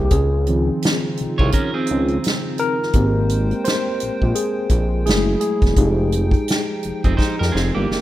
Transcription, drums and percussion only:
0.10 kick, closed hi-hat
0.47 closed hi-hat
0.82 snare, closed hi-hat
1.17 closed hi-hat
1.39 kick
1.52 kick, closed hi-hat
1.87 closed hi-hat
2.08 closed hi-hat
2.24 snare, closed hi-hat
2.58 closed hi-hat
2.83 snare
2.93 kick, closed hi-hat
3.29 closed hi-hat
3.51 closed hi-hat
3.65 snare, closed hi-hat
4.00 closed hi-hat
4.22 kick
4.35 closed hi-hat
4.69 kick, closed hi-hat
5.06 snare, closed hi-hat
5.41 closed hi-hat
5.62 kick, snare, closed hi-hat
5.76 kick, closed hi-hat
6.12 closed hi-hat
6.31 kick, closed hi-hat
6.48 snare, closed hi-hat
6.83 closed hi-hat
7.04 kick, closed hi-hat
7.19 kick, snare
7.42 snare
7.56 snare
7.91 snare

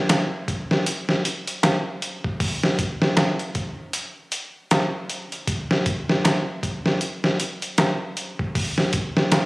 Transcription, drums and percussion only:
0.09 snare, closed hi-hat, darbuka tek
0.48 kick, closed hi-hat
0.71 snare
0.86 closed hi-hat
1.09 snare
1.25 closed hi-hat
1.47 closed hi-hat
1.63 snare, closed hi-hat, darbuka tek
2.02 closed hi-hat
2.24 kick
2.40 kick, open hi-hat
2.64 snare
2.79 kick, closed hi-hat
3.02 snare
3.17 snare, closed hi-hat, darbuka tek
3.39 closed hi-hat
3.55 kick, closed hi-hat
3.93 closed hi-hat
4.32 closed hi-hat
4.71 snare, closed hi-hat, darbuka tek
5.10 closed hi-hat
5.32 closed hi-hat
5.47 kick, closed hi-hat
5.71 snare
5.86 kick, closed hi-hat
6.09 snare
6.25 snare, closed hi-hat, darbuka tek
6.63 kick, closed hi-hat
6.86 snare
7.01 closed hi-hat
7.24 snare
7.40 closed hi-hat
7.62 closed hi-hat
7.78 snare, closed hi-hat, darbuka tek
8.17 closed hi-hat
8.39 kick
8.55 kick, open hi-hat
8.78 snare
8.93 kick, closed hi-hat
9.17 snare
9.32 snare, closed hi-hat, darbuka tek

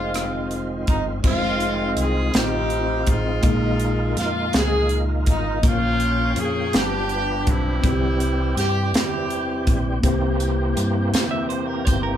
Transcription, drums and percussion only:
0.14 cross-stick, closed hi-hat
0.51 closed hi-hat
0.87 kick, closed hi-hat
1.24 kick, crash
1.60 closed hi-hat
1.97 closed hi-hat
2.34 snare, closed hi-hat
2.70 closed hi-hat
3.07 kick, closed hi-hat
3.43 kick, closed hi-hat
3.80 closed hi-hat
4.17 snare, closed hi-hat
4.53 snare, closed hi-hat
4.89 closed hi-hat
5.26 kick, closed hi-hat
5.63 kick, closed hi-hat
6.00 closed hi-hat
6.36 closed hi-hat
6.73 snare, closed hi-hat
7.09 closed hi-hat
7.47 kick, closed hi-hat
7.84 kick, closed hi-hat
8.20 closed hi-hat
8.57 snare, closed hi-hat
8.94 snare, closed hi-hat
9.30 closed hi-hat
9.67 kick, closed hi-hat
10.03 kick, closed hi-hat
10.40 closed hi-hat, tambourine
10.77 closed hi-hat, tambourine
11.14 snare, closed hi-hat, tambourine
11.50 closed hi-hat
11.87 kick, closed hi-hat, tambourine

